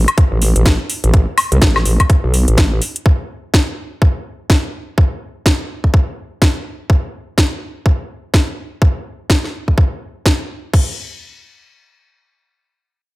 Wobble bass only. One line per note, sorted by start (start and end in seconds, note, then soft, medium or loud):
0.32 0.54 A1 loud
0.56 0.77 A1 medium
1.04 1.26 A1 medium
1.52 1.60 C2 medium
1.62 1.84 A1 loud
1.86 1.98 A1 medium
2.24 2.46 B1 loud
2.48 2.80 A1 medium